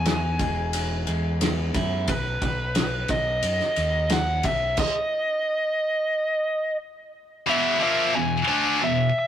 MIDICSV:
0, 0, Header, 1, 6, 480
1, 0, Start_track
1, 0, Key_signature, 4, "major"
1, 0, Tempo, 674157
1, 1482, Time_signature, 4, 2, 24, 8
1, 6601, End_track
2, 0, Start_track
2, 0, Title_t, "Lead electric guitar"
2, 0, Program_c, 0, 29
2, 0, Note_on_c, 0, 80, 108
2, 1221, Note_off_c, 0, 80, 0
2, 1492, Note_on_c, 0, 71, 97
2, 2210, Note_on_c, 0, 75, 90
2, 2229, Note_off_c, 0, 71, 0
2, 2935, Note_on_c, 0, 78, 101
2, 2948, Note_off_c, 0, 75, 0
2, 3170, Note_on_c, 0, 76, 83
2, 3176, Note_off_c, 0, 78, 0
2, 3389, Note_off_c, 0, 76, 0
2, 3414, Note_on_c, 0, 75, 89
2, 4819, Note_off_c, 0, 75, 0
2, 5340, Note_on_c, 0, 76, 103
2, 5554, Note_off_c, 0, 76, 0
2, 5572, Note_on_c, 0, 76, 96
2, 5803, Note_on_c, 0, 80, 98
2, 5813, Note_off_c, 0, 76, 0
2, 6039, Note_off_c, 0, 80, 0
2, 6048, Note_on_c, 0, 80, 100
2, 6291, Note_off_c, 0, 80, 0
2, 6291, Note_on_c, 0, 76, 100
2, 6532, Note_off_c, 0, 76, 0
2, 6542, Note_on_c, 0, 76, 114
2, 6601, Note_off_c, 0, 76, 0
2, 6601, End_track
3, 0, Start_track
3, 0, Title_t, "Clean electric guitar"
3, 0, Program_c, 1, 27
3, 0, Note_on_c, 1, 40, 68
3, 0, Note_on_c, 1, 47, 66
3, 0, Note_on_c, 1, 59, 77
3, 0, Note_on_c, 1, 64, 74
3, 39, Note_on_c, 1, 52, 67
3, 277, Note_on_c, 1, 56, 70
3, 281, Note_off_c, 1, 59, 0
3, 518, Note_off_c, 1, 52, 0
3, 518, Note_off_c, 1, 64, 0
3, 526, Note_on_c, 1, 52, 69
3, 756, Note_off_c, 1, 56, 0
3, 757, Note_off_c, 1, 40, 0
3, 765, Note_on_c, 1, 56, 67
3, 998, Note_off_c, 1, 47, 0
3, 999, Note_on_c, 1, 59, 70
3, 1242, Note_on_c, 1, 64, 80
3, 1480, Note_off_c, 1, 59, 0
3, 1482, Note_off_c, 1, 64, 0
3, 1483, Note_off_c, 1, 56, 0
3, 1484, Note_off_c, 1, 52, 0
3, 6601, End_track
4, 0, Start_track
4, 0, Title_t, "Distorted electric guitar"
4, 0, Program_c, 2, 30
4, 5314, Note_on_c, 2, 40, 91
4, 5314, Note_on_c, 2, 47, 87
4, 5318, Note_on_c, 2, 52, 109
4, 5543, Note_off_c, 2, 47, 0
4, 5546, Note_off_c, 2, 52, 0
4, 5546, Note_on_c, 2, 46, 104
4, 5549, Note_on_c, 2, 53, 102
4, 5550, Note_off_c, 2, 40, 0
4, 5554, Note_on_c, 2, 58, 105
4, 5786, Note_off_c, 2, 46, 0
4, 5788, Note_off_c, 2, 53, 0
4, 5790, Note_off_c, 2, 58, 0
4, 5794, Note_on_c, 2, 40, 60
4, 5795, Note_on_c, 2, 47, 71
4, 5989, Note_off_c, 2, 40, 0
4, 5990, Note_off_c, 2, 47, 0
4, 6037, Note_on_c, 2, 50, 78
4, 6040, Note_on_c, 2, 57, 97
4, 6043, Note_on_c, 2, 62, 96
4, 6271, Note_off_c, 2, 50, 0
4, 6271, Note_on_c, 2, 40, 60
4, 6273, Note_off_c, 2, 57, 0
4, 6274, Note_off_c, 2, 62, 0
4, 6274, Note_on_c, 2, 47, 80
4, 6467, Note_off_c, 2, 40, 0
4, 6469, Note_off_c, 2, 47, 0
4, 6601, End_track
5, 0, Start_track
5, 0, Title_t, "Fingered electric bass"
5, 0, Program_c, 3, 33
5, 0, Note_on_c, 3, 40, 94
5, 254, Note_off_c, 3, 40, 0
5, 283, Note_on_c, 3, 28, 82
5, 734, Note_off_c, 3, 28, 0
5, 760, Note_on_c, 3, 40, 88
5, 1213, Note_off_c, 3, 40, 0
5, 1244, Note_on_c, 3, 42, 97
5, 1461, Note_off_c, 3, 42, 0
5, 1484, Note_on_c, 3, 35, 98
5, 1700, Note_off_c, 3, 35, 0
5, 1721, Note_on_c, 3, 35, 95
5, 2173, Note_off_c, 3, 35, 0
5, 2201, Note_on_c, 3, 35, 99
5, 2419, Note_off_c, 3, 35, 0
5, 2437, Note_on_c, 3, 42, 101
5, 2548, Note_off_c, 3, 42, 0
5, 2685, Note_on_c, 3, 39, 103
5, 3135, Note_off_c, 3, 39, 0
5, 3164, Note_on_c, 3, 35, 90
5, 3381, Note_off_c, 3, 35, 0
5, 6601, End_track
6, 0, Start_track
6, 0, Title_t, "Drums"
6, 39, Note_on_c, 9, 51, 96
6, 46, Note_on_c, 9, 38, 108
6, 111, Note_off_c, 9, 51, 0
6, 117, Note_off_c, 9, 38, 0
6, 279, Note_on_c, 9, 51, 76
6, 281, Note_on_c, 9, 36, 82
6, 351, Note_off_c, 9, 51, 0
6, 353, Note_off_c, 9, 36, 0
6, 521, Note_on_c, 9, 51, 102
6, 592, Note_off_c, 9, 51, 0
6, 761, Note_on_c, 9, 51, 65
6, 832, Note_off_c, 9, 51, 0
6, 1003, Note_on_c, 9, 51, 101
6, 1009, Note_on_c, 9, 38, 105
6, 1074, Note_off_c, 9, 51, 0
6, 1081, Note_off_c, 9, 38, 0
6, 1241, Note_on_c, 9, 51, 69
6, 1243, Note_on_c, 9, 36, 89
6, 1313, Note_off_c, 9, 51, 0
6, 1314, Note_off_c, 9, 36, 0
6, 1478, Note_on_c, 9, 51, 84
6, 1482, Note_on_c, 9, 36, 106
6, 1549, Note_off_c, 9, 51, 0
6, 1553, Note_off_c, 9, 36, 0
6, 1721, Note_on_c, 9, 36, 83
6, 1721, Note_on_c, 9, 51, 60
6, 1792, Note_off_c, 9, 36, 0
6, 1792, Note_off_c, 9, 51, 0
6, 1958, Note_on_c, 9, 51, 90
6, 1964, Note_on_c, 9, 38, 119
6, 2029, Note_off_c, 9, 51, 0
6, 2035, Note_off_c, 9, 38, 0
6, 2195, Note_on_c, 9, 51, 63
6, 2201, Note_on_c, 9, 36, 76
6, 2267, Note_off_c, 9, 51, 0
6, 2272, Note_off_c, 9, 36, 0
6, 2439, Note_on_c, 9, 51, 85
6, 2510, Note_off_c, 9, 51, 0
6, 2565, Note_on_c, 9, 38, 34
6, 2636, Note_off_c, 9, 38, 0
6, 2679, Note_on_c, 9, 51, 65
6, 2750, Note_off_c, 9, 51, 0
6, 2916, Note_on_c, 9, 51, 82
6, 2922, Note_on_c, 9, 38, 122
6, 2987, Note_off_c, 9, 51, 0
6, 2994, Note_off_c, 9, 38, 0
6, 3156, Note_on_c, 9, 51, 76
6, 3162, Note_on_c, 9, 36, 85
6, 3227, Note_off_c, 9, 51, 0
6, 3233, Note_off_c, 9, 36, 0
6, 3395, Note_on_c, 9, 49, 96
6, 3401, Note_on_c, 9, 36, 110
6, 3467, Note_off_c, 9, 49, 0
6, 3473, Note_off_c, 9, 36, 0
6, 6601, End_track
0, 0, End_of_file